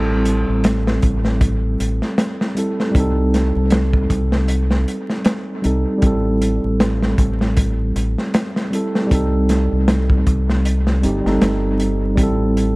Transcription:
Already playing: A1 G3 C4 E4 A4
0.25 closed hi-hat
0.48 A1
0.64 snare, closed hi-hat
0.87 snare
1.02 A1, kick, closed hi-hat
1.25 snare
1.41 kick, closed hi-hat
1.80 A1, closed hi-hat
2.02 snare
2.18 snare, closed hi-hat
2.41 snare
2.55 G3 C4 E4 A4, closed hi-hat
2.80 snare
2.92 C2 G3 C4, kick
2.96 D#4, closed hi-hat
3.00 A4
3.34 snare, closed hi-hat
3.56 C2
3.70 snare, closed hi-hat
3.93 kick
4.10 C2, kick, closed hi-hat
4.32 snare
4.48 closed hi-hat
4.71 snare
4.88 closed hi-hat
5.10 snare
5.25 snare, closed hi-hat
5.62 C2 G3 C4 D#4, closed hi-hat
5.66 A4
5.98 G3 C4, closed hi-hat
6.03 A1 E4 A4, kick
6.42 closed hi-hat
6.64 A1
6.80 snare, closed hi-hat
7.02 snare
7.18 A1, kick, closed hi-hat
7.41 snare
7.57 kick, closed hi-hat
7.96 A1, closed hi-hat
8.18 snare
8.34 snare, closed hi-hat
8.56 snare
8.71 G3 C4 E4, closed hi-hat
8.75 A4
8.95 snare
9.07 G3 C4
9.11 C2 D#4 A4, kick, closed hi-hat
9.49 snare, closed hi-hat
9.72 C2
9.88 snare, closed hi-hat
10.10 kick
10.27 C2, kick, closed hi-hat
10.49 snare
10.65 closed hi-hat
10.87 snare
11.01 G1 G3 C4 D#4, closed hi-hat
11.06 G4
11.21 G3 C4
11.25 G1 D#4 A4, snare
11.41 G1, snare, closed hi-hat
11.80 closed hi-hat
12.15 A1 G3 C4, kick, closed hi-hat
12.21 E4 A4
12.57 closed hi-hat

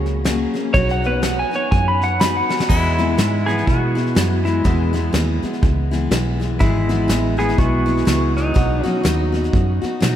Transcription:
Already playing: C#2 A#3 C#4 F#4 G#4
0.06 snare
0.24 F#3 A#3 C#4 G#4, snare, hi-hat pedal
0.54 A#3 C#4 G#4, snare
0.74 B1 B2 F#3 B3 D#4 F#4 C#5, kick, snare
0.89 F#5, snare
1.02 B3 D#4 F#4, snare
1.07 B4
1.22 F#3 B3 D#4 F#4 F#5, snare, hi-hat pedal
1.39 G#5
1.51 B3 D#4 F#4, snare
1.56 C#5
1.71 F#2 G#5, kick, snare
1.88 B5
2.02 F#5, snare
2.20 F#3 B3 D#4 F#4 B5, snare, hi-hat pedal
2.37 F#5
2.49 B3 D#4 F#4, snare
2.60 snare
2.69 E2 B2 E3 G#3 B3 E4, kick, snare, crash
2.98 E2 B2 E3 G#3 B3 E4, snare
3.17 G#2 E3 G#3 B3 E4, snare, hi-hat pedal
3.46 E3 G#3 B3 E4 G#4, snare
3.58 snare
3.66 B2 B3 F#4, kick, snare
3.95 E3 G#3 B3 E4, snare
4.07 snare
4.15 F#2 E3 G#3 B3 E4, snare, hi-hat pedal
4.45 E3 G#3 B3 E4, snare
4.64 E2 B2 E3 G#3 B3 E4, kick, snare
4.93 E2 B2 E3 G#3 B3 E4, snare
5.13 D#2 E3 G#3 B3 E4, snare, hi-hat pedal
5.43 E3 G#3 B3 E4, muted fingered electric bass stroke, snare
5.53 snare
5.63 C#2, kick, snare
5.91 E3 G#3 B3 E4, snare
6.11 B1 E3 G#3 B3 E4, snare, hi-hat pedal
6.40 E3 G#3 B3 E4, snare
6.59 G#1 E2 B2 E3 G#3 B3 E4, kick, snare
6.89 E2 B2 E3 G#3 B3 E4, snare
7.08 A1 E3 G#3 B3 E4, snare, hi-hat pedal
7.37 E3 G#3 B3 E4 G#4, snare
7.49 snare
7.58 B1 B3 F#4, kick, snare
7.86 E3 G#3 B3 E4, snare
7.97 snare
8.05 C#2 E3 G#3 B3 E4, snare, hi-hat pedal
8.37 F#3 D#4, snare
8.54 B1 B2 F#3 B3 D#4 F#4, kick, snare
8.83 B2 F#3 B3 C#4 D#4 F#4, muted fingered electric bass stroke, snare
9.03 D#2 F#3 B3 D#4 F#4, snare, hi-hat pedal
9.32 B3 D#4 F#4, snare
9.44 snare
9.53 F#2, kick, snare
9.82 B3 D#4 F#4, muted fingered electric bass stroke, snare
10.00 B2 F#3 B3 D#4 F#4, snare, hi-hat pedal

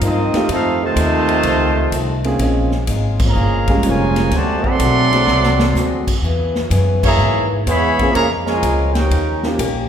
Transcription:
0.01 G2 G#2 F3 A#3 C4 D#4 F4 A#4 D#5, kick, hi-hat pedal, ride
0.33 A3 C4 D#4 F4 G4, muted upright bass stroke, snare, ride
0.49 F2 D#3 A3 C4 D#4 F4 A4 C5 F5, kick, ride
0.82 C3 D#3 A3 F4 C5 D#5 A5
0.96 D#2 F2 D#3 A3 C4, kick, hi-hat pedal, ride
1.29 ride
1.43 C#2 F2 D#3 A3, kick, ride
1.48 C4
1.92 C2 F2 D#3 A3 C4, kick, hi-hat pedal, ride
2.24 A#3 C4 C#4 F4 G#4, ride
2.39 A#1 A#2 G#3 A#3 C4 C#4 F4 G#4, kick, ride
2.71 snare
2.87 G#1 A#2 G#3 C#4 F4, kick, hi-hat pedal, ride
3.20 C#3 F3 A#3, kick, crash
3.27 G#4 C#5 F5 A#5
3.35 G1 A#2 G#3 C#4 F4
3.68 G3 G#3 A#3 C#4 F4, kick, ride
3.83 F1 A#2 C#3 F3 G#3 C#4 F4, kick, hi-hat pedal, ride
3.88 F4 A#4 C#5 G#5
4.16 snare, ride
4.31 D2 C3 D3 F#3 A3 C4 F#4 G#4, kick, snare, ride
4.35 F#4 C5 D5 A5
4.64 F#3 A3 C4 A4 D5 F#5 C6, kick
4.79 B1 D3 C4 F#4 G#4, kick, hi-hat pedal, ride
5.12 A3 C4 D4 F#4 G#4, snare, ride
5.28 C2 D3 C4 F#4 G#4, snare
5.43 snare
5.59 snare
5.74 D2 D3 C4 F#4 G#4, snare, hi-hat pedal
6.07 kick, crash
6.22 E2 C#3 B3 E4 G#4, kick
6.55 snare
6.70 F#2 C#3 B3 E4 G#4, kick, hi-hat pedal, ride
7.03 B2 E3 A#3 G#4 C#5 E5 A#5, kick, crash
7.18 G#2 C#3 B3 E4 G#4
7.66 E2 C#3 E3 G#3 B3 E4 G#4 C#5 E5 B5, kick, snare, hi-hat pedal, ride
7.99 A#3 C4 C#4 F4 G#4, kick, ride
8.11 F2 C#3 F3 A#3 G#4 C#5 F5 A#5, kick
8.15 A#2 G#3 C#4 F4, ride
8.45 C#3 F3 G#3 F4 A#4 C#5 G#5, snare
8.63 C#2 A#2 G#3 C#4 F4, kick, hi-hat pedal, ride
8.93 A#3 C#4 D#4 G4 A#4 C#5 G5, snare, ride
9.11 D#2 D#3 A#3 C#4 G4, kick, ride
9.43 A#3 C#4 D#4 F4 G4, snare
9.59 A#1 D#3 A#3 C#4 G4, kick, hi-hat pedal, ride

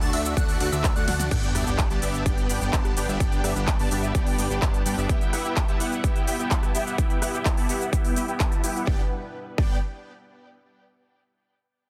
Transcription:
Already playing: A3 D4 F#4 E5
0.01 D2 A3 D4 F#4 D5 A5 A6, open hi-hat, shaker
0.13 D2 A3 D4 F#4 D5 E5 E6, open hi-hat, ride
0.25 closed hi-hat, shaker
0.37 D2 A3 D4 F#4 D5 F#5 F#6, kick, closed hi-hat, shaker
0.49 open hi-hat, shaker
0.60 D2 A3 D4 F#4 D5 F#5 F#6, open hi-hat, ride
0.72 D2 A3 D4 F#4 D5 E5 E6, closed hi-hat, shaker
0.84 kick, clap, closed hi-hat, shaker
0.96 D2 A3 D4 F#4 D5 F#5 F#6, closed hi-hat, shaker
1.08 D2 A3 D4 F#4 D5 F#5 F#6, snare, open hi-hat, ride
1.20 snare, shaker
1.31 G1 G3 B3 D4 G4 B4 D5 G5, kick, closed hi-hat, crash, sub drop, shaker
1.43 closed hi-hat, shaker
1.55 G1 B3 D4 G4 D5 E5, cross-stick, open hi-hat, shaker
1.67 G1 B3 D4 G4 D5 G5, closed hi-hat, shaker
1.79 kick, clap, closed hi-hat, shaker
1.90 G1 B3 D4 G4 D5 A5, closed hi-hat, shaker
2.02 G1 B3 D4 G4 D5 E5, open hi-hat, shaker
2.14 closed hi-hat, shaker
2.26 B3 D4 G4 D5 G5, kick, closed hi-hat, shaker
2.38 closed hi-hat, shaker
2.49 G1 B3 D4 G4 D5 G5, open hi-hat, shaker
2.61 G1 B3 D4 G4 D5 G5, closed hi-hat, shaker
2.73 G1 B3 D4 G4 D5 A5, kick, clap, closed hi-hat, shaker
2.85 cross-stick, closed hi-hat, shaker
2.97 G1 B3 D4 G4 D5 G5, open hi-hat, shaker
3.08 G1 B3 D4 G4 D5 E5, shaker
3.20 G1 B3 D4 G4 D5 G5, kick, closed hi-hat, shaker
3.32 closed hi-hat, shaker
3.44 G1 B3 D4 G4 D5 E5, cross-stick, open hi-hat, shaker
3.56 G1 B3 D4 G4 D5 G5, closed hi-hat, shaker
3.68 kick, clap, closed hi-hat, shaker
3.79 G1 B3 D4 G4 D5 A5, open hi-hat, shaker
3.91 G1 B3 D4 G4 D5 E5, open hi-hat, shaker
4.03 closed hi-hat, shaker
4.15 G1 B3 D4 G4 D5 G5, kick, closed hi-hat, shaker
4.27 open hi-hat, shaker
4.38 G1 B3 D4 G4 D5 G5, open hi-hat, shaker
4.50 G1 B3 D4 G4 D5 G5, closed hi-hat, shaker
4.62 B3 D4 G4 D5 A5, kick, clap, closed hi-hat, shaker
4.74 closed hi-hat, shaker
4.86 G2 B3 D4 G4 D5 G5, open hi-hat, shaker
4.98 G1 B3 D4 G4 D5 E5, shaker
5.09 B3 E4 G4 E5 G5, kick, closed hi-hat, shaker
5.21 closed hi-hat, shaker
5.33 B3 E4 G4 E5 F#5, cross-stick, open hi-hat, shaker
5.45 B3 E4 G4 E5 G5, closed hi-hat, shaker
5.57 kick, clap, closed hi-hat, shaker
5.68 B3 E4 G4 E5 A5, closed hi-hat, shaker
5.80 B3 E4 G4 E5 F#5, open hi-hat, shaker
5.92 closed hi-hat, shaker
6.04 B3 E4 G4 E5 G5, kick, closed hi-hat, shaker
6.16 closed hi-hat, shaker
6.27 B3 E4 G4 E5 G5, open hi-hat, shaker
6.39 B3 E4 G4 E5 G5, closed hi-hat, shaker
6.51 B3 E4 G4 E5 A5, kick, clap, closed hi-hat, shaker
6.63 cross-stick, closed hi-hat, shaker
6.75 B3 E4 G4 E5 G5, open hi-hat, shaker
6.87 B3 E4 G4 E5 F#5, shaker
6.98 B3 E4 G4 E5 G5, kick, closed hi-hat, shaker
7.10 closed hi-hat, shaker
7.22 B3 E4 G4 E5 F#5, cross-stick, open hi-hat, shaker
7.34 B3 E4 G4 E5 G5, closed hi-hat, shaker
7.45 kick, clap, closed hi-hat, shaker
7.57 B3 E4 G4 E5 A5, open hi-hat, shaker
7.69 B3 E4 G4 E5 F#5, open hi-hat, shaker
7.81 closed hi-hat, shaker
7.93 B3 E4 G4 E5 G5, kick, closed hi-hat, shaker
8.05 open hi-hat, shaker
8.16 B3 E4 G4 E5 G5, open hi-hat, shaker
8.28 B3 E4 G4 E5 G5, closed hi-hat, shaker
8.40 B3 E4 G4 E5 A5, kick, clap, closed hi-hat, shaker
8.52 closed hi-hat, shaker
8.64 B3 E4 G4 E5 G5, open hi-hat, shaker
8.75 B3 E4 G4 E5 F#5, shaker
8.87 G1 G3 B3 D4 G4 B4 D5 G5, kick
9.58 G1 B3 D4 G4 D5 G5, kick

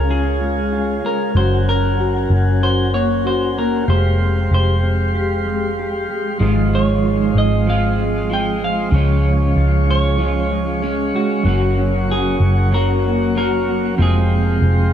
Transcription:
Already playing: C#2 C#3 G#3 C#4 G#4 A#4 C#5 F5 G#5
0.10 F4 G#4
0.41 G#3
0.72 F4
1.04 G#3 A#4
1.35 F#1 F#2 C#4 F#4 A#4 C5 F#5
1.67 C#4 A#4
1.99 F#4
2.30 F#1 C#4
2.61 F#4 C5
2.93 A#3 C#5
3.24 F#4 C5
3.56 A#3 A#4
3.87 F1 F2 G#3 G4 C5 F5 G5 C6
4.19 C4
4.51 F1 G4 C5
4.82 C4
5.14 G4
5.46 G#3
5.78 G4
6.10 G#3
6.40 G#1 G#2 D#3 F3 G#3 F4 G#4 D#5
6.45 F4
6.75 C#5
7.04 F4
7.35 G#1 C4 D#5
7.67 F3 G#3 C4 F4 F5
7.98 G#3
8.30 F3 G#3 C4 F4 G5
8.62 G#3 F5
8.91 C#2 C#3 F3 G#3 C#4 F4 C#5 F5 C#6
8.96 F4
9.25 C#4
9.56 C#2 F4
9.87 C#4 C#5
10.17 F3 G#3 C#4 F4
10.50 G#3
10.82 G#3 C#4
11.14 G#3 F#4
11.43 F#1 F#2 C#3 F#3 A#3 F#4 A#4 F#5
11.48 C#4 F#4
11.77 C#4
12.08 F#4 G#4
12.40 F#1 C#4
12.71 F#3 A#3 C#4 F#4 A#4
13.04 A#3
13.35 F#3 A#3 C#4 F#4 A#4
13.68 A#3
13.97 F1 F2 C3 F3 G#3 G#4 F5 G5 C6
14.01 C4 G#4
14.30 C4
14.62 F1

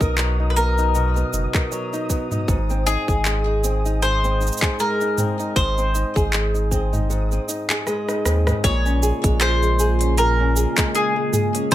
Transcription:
Already playing: B2 F#3 B3 D#4 A#4 D#6
0.01 B1 A#4, kick, shaker
0.18 F#3, clap, shaker
0.40 D#4
0.50 B4
0.56 B3 A#4, shaker
0.78 D#4, shaker
0.95 B2, shaker
1.16 B3, shaker
1.33 F#1 D#4, shaker
1.54 A#4, kick, clap, shaker
1.72 F#3, shaker
1.93 D#4, shaker
2.10 B3, kick, shaker
2.31 D#4, mid tom, shaker
2.48 G#1 G#2, kick, shaker
2.70 C4, shaker
2.87 D#4 G#4, shaker
3.08 G#1 G#4, kick, shaker
3.25 G#3, clap, shaker
3.47 D#4
3.64 C4, shaker
3.85 D#4, shaker
4.02 G#2 C5, shaker
4.24 C4, shaker
4.41 D#4, shaker
4.47 shaker
4.52 shaker
4.57 shaker
4.62 G#4, kick, clap
4.79 G#3 A#4, shaker
5.01 D#4, shaker
5.18 C4, mid tom, shaker
5.40 D#4, shaker
5.56 G#1 C5, kick, shaker
5.78 C4, shaker
5.95 D#4, shaker
6.16 G#1 G#4, kick, shaker
6.33 G#3, clap, shaker
6.54 D#4, shaker
6.71 C4, kick, shaker
6.93 D#4, mid tom, shaker
7.10 G#2, shaker
7.32 C4, shaker
7.48 D#4, shaker
7.70 G#4, clap, shaker
7.87 G#3, cross-stick, shaker
8.08 D#4, cross-stick, shaker
8.25 D#2 C4, cross-stick, shaker
8.47 D#4, cross-stick, mid tom, shaker
8.63 A#1 A#2 C#3 G#3 A#3 F4 C#5, kick, open hi-hat, shaker
8.86 C#4, shaker
9.03 G#4, shaker
9.24 A#1 G#3, kick, open hi-hat, shaker
9.41 G#4 C5, clap, open hi-hat, shaker
9.63 G#3, shaker
9.79 G#4, shaker
10.01 C#4, open hi-hat, shaker
10.17 A#2 A#4, open hi-hat, shaker
10.40 C#4
10.56 G#4, shaker
10.78 G#3, kick, clap, open hi-hat, shaker
10.95 G#4, open hi-hat, shaker
11.16 G#3
11.33 G#4, mid tom, shaker
11.55 C#4, open hi-hat, shaker
11.71 A#1 A#2 C5, kick, open hi-hat, shaker

